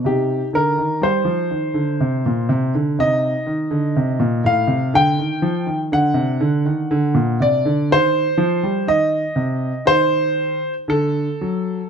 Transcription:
<<
  \new Staff \with { instrumentName = "Grand piano" } { \time 3/4 \key c \minor \tempo 4 = 61 << { g'8 bes'8 c''4.~ c''16 r16 | \key d \phrygian ees''4. f''8 g''4 | fis''4. d''8 c''4 | ees''4 c''4 a'4 | } \\ { ees'2. | ees'2. | d'2 r4 | r2. | } >> }
  \new Staff \with { instrumentName = "Grand piano" } { \clef bass \time 3/4 \key c \minor c8 d16 ees16 g16 f16 ees16 d16 c16 bes,16 c16 d16 | \key d \phrygian c8 ees16 d16 c16 bes,16 a,16 c16 d16 ees16 f16 ees16 | d16 c16 d16 ees16 d16 bes,16 c16 d16 ees8 f16 g16 | ees8 c8 ees4 d8 fis8 | }
>>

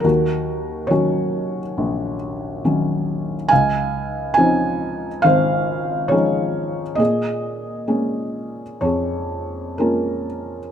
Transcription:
<<
  \new Staff \with { instrumentName = "Felt piano" } { \time 4/4 \key des \major \tempo 4 = 69 << { bes'4 des''4. r4. | aes''4 aes''4 f''4 des''4 | ees''2 des''4 bes'4 | } \\ { ges'4 ges'2 r4 | f''2 c''2 | aes'2 aes'4 <des' f'>4 | } >> }
  \new Staff \with { instrumentName = "Felt piano" } { \clef bass \time 4/4 \key des \major ees,4 <ees ges des'>4 bes,,4 <ees ges des'>4 | des,4 <f c' des' ees'>4 aes,,4 <f aes des' ees'>4 | bes,4 <aes bes des'>4 f,4 <aes bes>4 | }
>>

